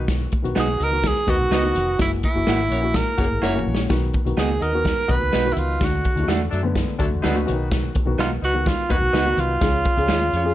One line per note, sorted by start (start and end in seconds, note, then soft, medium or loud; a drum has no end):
0.00 0.25 B1 loud
0.00 0.31 D#3 medium
0.00 0.32 B3 medium
0.00 0.32 F#4 loud
0.08 kick loud
0.08 snare loud
0.08 closed hi-hat medium
0.08 muted conga soft
0.32 kick medium
0.32 closed hi-hat medium
0.32 high conga medium
0.42 0.55 B1 medium
0.42 0.81 D#3 medium
0.42 0.81 B3 medium
0.42 0.82 F#4 medium
0.42 closed hi-hat medium
0.55 0.77 B1 medium
0.55 0.66 B3 medium
0.55 0.67 D#4 medium
0.55 0.67 F#4 medium
0.55 0.85 G#4 loud
0.55 snare loud
0.55 closed hi-hat medium
0.68 muted conga soft
0.68 high conga medium
0.79 1.10 C#2 medium
0.79 0.90 B3 medium
0.79 0.90 D#4 medium
0.79 0.89 F#4 medium
0.79 0.90 D#5 medium
0.79 closed hi-hat medium
0.83 1.09 A#4 loud
0.91 1.20 D#3 medium
0.91 1.20 B3 medium
0.91 1.21 F#4 medium
1.03 kick medium
1.03 snare loud
1.03 closed hi-hat loud
1.03 muted conga soft
1.03 low conga medium
1.07 1.32 G#4 loud
1.16 muted conga soft
1.26 1.38 D#2 medium
1.26 1.55 D#3 medium
1.26 1.56 B3 medium
1.26 1.36 B3 medium
1.26 1.36 D#4 medium
1.26 1.36 F#4 medium
1.26 1.56 F#4 medium
1.26 2.01 F#4 loud
1.26 1.36 D#5 loud
1.26 kick loud
1.26 snare soft
1.26 closed hi-hat medium
1.26 high conga medium
1.39 1.49 B1 medium
1.39 high conga medium
1.51 1.71 C#2 medium
1.51 1.62 B3 medium
1.51 1.97 B3 loud
1.51 1.97 D#4 loud
1.51 1.62 D#4 medium
1.51 1.97 F#4 medium
1.51 1.63 F#4 medium
1.51 1.97 D#5 loud
1.51 snare medium
1.51 closed hi-hat medium
1.62 1.91 D#3 medium
1.62 1.91 B3 medium
1.62 1.92 F#4 medium
1.62 high conga medium
1.75 1.95 F1 medium
1.75 closed hi-hat medium
1.75 low conga medium
1.98 2.20 F#1 loud
1.98 2.27 E3 medium
1.98 2.27 A#3 medium
1.98 2.12 E4 medium
1.98 2.28 F#4 medium
1.98 kick loud
1.98 snare loud
1.98 closed hi-hat medium
1.98 muted conga soft
1.98 low conga medium
2.23 2.97 E4 medium
2.23 kick medium
2.23 closed hi-hat medium
2.23 high conga medium
2.34 2.45 F#1 medium
2.34 2.72 E3 medium
2.34 2.72 A#3 medium
2.34 2.73 F#4 medium
2.47 2.67 G#1 medium
2.47 2.57 A#3 medium
2.47 2.58 E4 medium
2.47 2.58 F#4 loud
2.47 snare loud
2.47 closed hi-hat medium
2.60 muted conga soft
2.60 high conga medium
2.70 3.01 A#1 medium
2.70 2.81 A#3 medium
2.70 2.81 C#4 medium
2.70 2.82 F#4 medium
2.70 2.81 C#5 medium
2.70 closed hi-hat medium
2.81 3.10 E3 medium
2.81 3.11 A#3 medium
2.81 3.12 F#4 medium
2.94 3.67 A#4 medium
2.94 kick medium
2.94 snare loud
2.94 closed hi-hat loud
2.94 muted conga soft
2.94 low conga medium
3.18 3.29 F#1 medium
3.18 3.46 E3 medium
3.18 3.47 A#3 medium
3.18 3.27 A#3 medium
3.18 3.26 C#4 medium
3.18 3.26 F#4 medium
3.18 3.47 G#4 medium
3.18 3.26 C#5 medium
3.18 kick medium
3.18 snare soft
3.18 closed hi-hat medium
3.18 high conga medium
3.31 3.41 G#1 medium
3.31 high conga medium
3.42 3.62 F#1 medium
3.42 3.53 A#3 medium
3.42 3.88 A#3 loud
3.42 3.88 C#4 loud
3.42 3.53 E4 medium
3.42 3.88 F#4 medium
3.42 3.53 F#4 medium
3.42 3.88 C#5 loud
3.42 snare soft
3.42 muted conga soft
3.53 3.82 E3 medium
3.53 3.82 A#3 medium
3.53 3.83 F#4 medium
3.53 muted conga soft
3.53 high conga medium
3.59 mid tom medium
3.66 3.86 A#1 medium
3.66 low conga medium
3.75 snare loud
3.89 4.11 B1 medium
3.89 4.18 D#3 medium
3.89 4.18 B3 medium
3.89 4.18 F#4 medium
3.89 kick loud
3.89 snare loud
3.89 closed hi-hat medium
3.89 muted conga soft
4.04 muted conga soft
4.13 kick medium
4.13 closed hi-hat medium
4.13 high conga medium
4.25 4.36 B1 loud
4.25 4.63 D#3 medium
4.25 4.63 B3 medium
4.25 4.64 F#4 medium
4.25 closed hi-hat medium
4.37 4.58 C#2 medium
4.37 4.48 B3 medium
4.37 4.48 D#4 medium
4.37 4.49 F#4 medium
4.37 4.64 G#4 medium
4.37 snare loud
4.37 closed hi-hat medium
4.37 muted conga soft
4.50 muted conga soft
4.50 high conga medium
4.61 4.92 D#2 medium
4.61 4.72 B3 medium
4.61 4.71 D#4 medium
4.61 4.72 F#4 medium
4.61 5.13 A#4 loud
4.61 4.71 D#5 medium
4.61 closed hi-hat medium
4.73 5.01 D#3 medium
4.73 5.02 B3 medium
4.73 5.02 F#4 medium
4.85 kick medium
4.85 snare loud
4.85 closed hi-hat loud
4.85 muted conga soft
4.85 low conga medium
4.98 muted conga soft
5.08 5.20 B1 loud
5.08 5.37 D#3 medium
5.08 5.17 B3 medium
5.08 5.38 B3 medium
5.08 5.17 D#4 medium
5.08 5.17 F#4 medium
5.08 5.38 F#4 medium
5.08 5.54 B4 loud
5.08 5.17 D#5 medium
5.08 kick loud
5.08 closed hi-hat medium
5.08 high conga medium
5.20 5.32 C#2 medium
5.20 high conga medium
5.32 5.54 B1 medium
5.32 5.78 F#3 medium
5.32 5.78 B3 loud
5.32 5.43 B3 medium
5.32 5.78 D#4 medium
5.32 5.44 D#4 medium
5.32 5.44 F#4 medium
5.32 5.78 B4 loud
5.32 snare loud
5.32 closed hi-hat medium
5.32 muted conga soft
5.44 5.73 D#3 medium
5.44 5.73 B3 medium
5.44 5.74 F#4 medium
5.44 high conga medium
5.53 5.77 C#2 medium
5.53 5.60 E4 medium
5.53 closed hi-hat medium
5.57 5.86 F4 medium
5.57 low conga medium
5.80 6.01 D2 medium
5.80 6.08 D3 medium
5.80 6.09 A3 medium
5.80 6.09 F#4 medium
5.80 kick loud
5.80 snare loud
5.80 closed hi-hat medium
5.84 6.30 F#4 medium
6.04 kick medium
6.04 closed hi-hat medium
6.04 high conga medium
6.15 6.26 D2 loud
6.15 6.53 D3 medium
6.15 6.54 A3 medium
6.15 6.23 E4 medium
6.15 closed hi-hat medium
6.23 6.57 F#4 medium
6.27 6.48 E2 medium
6.27 6.39 A3 medium
6.27 6.39 D4 medium
6.27 6.39 F#4 loud
6.27 snare loud
6.27 closed hi-hat medium
6.27 muted conga soft
6.40 high conga medium
6.51 6.83 F#2 medium
6.51 6.62 F#3 medium
6.51 6.61 A3 medium
6.51 6.62 D4 medium
6.51 6.61 A4 loud
6.51 closed hi-hat medium
6.63 6.91 D3 medium
6.63 6.92 A3 medium
6.63 6.92 B3 medium
6.75 kick medium
6.75 snare loud
6.75 closed hi-hat loud
6.75 muted conga soft
6.75 low conga medium
6.98 7.10 D2 medium
6.98 7.27 D3 medium
6.98 7.07 F#3 loud
6.98 7.27 A3 medium
6.98 7.07 A3 medium
6.98 7.07 D4 loud
6.98 7.28 F#4 medium
6.98 7.07 A4 loud
6.98 kick loud
6.98 snare soft
6.98 closed hi-hat medium
6.98 high conga medium
7.11 7.22 E2 medium
7.11 high conga medium
7.22 7.44 D2 medium
7.22 7.68 F#3 loud
7.22 7.34 A3 medium
7.22 7.68 B3 medium
7.22 7.34 D4 medium
7.22 7.68 D#4 medium
7.22 7.35 F#4 medium
7.22 7.68 B4 loud
7.22 snare loud
7.22 closed hi-hat medium
7.22 muted conga soft
7.33 7.46 D3 medium
7.33 7.47 A3 medium
7.33 7.45 F#4 loud
7.33 closed hi-hat soft
7.33 muted conga soft
7.33 high conga medium
7.45 7.88 B1 loud
7.45 7.52 C#3 medium
7.45 7.94 B3 medium
7.45 7.95 F#4 loud
7.45 closed hi-hat medium
7.45 low conga medium
7.51 7.97 D#3 medium
7.71 kick loud
7.71 snare loud
7.71 closed hi-hat medium
7.84 muted conga soft
7.95 kick loud
7.95 closed hi-hat medium
7.95 high conga medium
8.05 8.17 B1 loud
8.05 8.43 D#3 medium
8.05 8.44 B3 medium
8.05 8.44 F#4 medium
8.18 8.39 B1 loud
8.18 8.29 B3 medium
8.18 8.29 D#4 loud
8.18 8.31 F4 medium
8.18 8.30 F#4 medium
8.18 snare medium
8.18 closed hi-hat loud
8.31 high conga medium
8.42 8.72 C#2 medium
8.42 8.53 F#3 medium
8.42 8.52 B3 medium
8.42 8.53 D#4 medium
8.42 8.69 F#4 loud
8.42 8.52 B4 medium
8.42 closed hi-hat medium
8.53 8.82 D#3 medium
8.53 8.82 B3 medium
8.53 8.83 F#4 medium
8.66 8.92 F4 loud
8.66 kick medium
8.66 snare loud
8.66 closed hi-hat loud
8.66 low conga medium
8.89 9.00 D#2 loud
8.89 9.17 D#3 medium
8.89 8.98 F#3 medium
8.89 9.18 B3 medium
8.89 8.98 B3 medium
8.89 8.97 D#4 medium
8.89 9.18 F#4 medium
8.89 9.41 F#4 loud
8.89 8.98 B4 loud
8.89 kick loud
8.89 closed hi-hat medium
8.89 high conga medium
9.01 9.12 B1 medium
9.01 high conga medium
9.13 9.34 C#2 medium
9.13 9.59 F#3 medium
9.13 9.24 B3 medium
9.13 9.59 B3 loud
9.13 9.59 D#4 loud
9.13 9.24 D#4 medium
9.13 9.25 F#4 loud
9.13 9.59 B4 loud
9.13 snare medium
9.13 closed hi-hat medium
9.13 muted conga soft
9.25 9.53 D#3 medium
9.25 9.54 B3 medium
9.25 9.54 F#4 medium
9.25 high conga medium
9.37 9.58 C2 loud
9.37 10.54 F4 loud
9.37 closed hi-hat medium
9.37 low conga medium
9.61 9.82 C#2 medium
9.61 9.89 F3 medium
9.61 9.89 C#4 medium
9.61 9.90 G#4 medium
9.61 kick loud
9.61 snare loud
9.61 closed hi-hat medium
9.61 low conga medium
9.85 kick loud
9.85 closed hi-hat medium
9.85 high conga medium
9.96 10.07 C#2 loud
9.96 10.34 F3 medium
9.96 10.34 C#4 medium
9.96 10.35 G#4 medium
9.96 closed hi-hat medium
10.08 10.29 D#2 loud
10.08 10.19 G#3 loud
10.08 10.19 C#4 medium
10.08 10.20 F4 loud
10.08 snare loud
10.08 closed hi-hat medium
10.08 muted conga soft
10.21 high conga medium
10.33 10.54 F2 medium
10.33 10.43 G#3 medium
10.33 10.43 C#4 medium
10.33 10.43 F4 medium
10.33 10.43 C#5 medium
10.33 closed hi-hat medium
10.43 10.54 F3 medium
10.43 10.54 C#4 medium
10.43 10.54 G#4 loud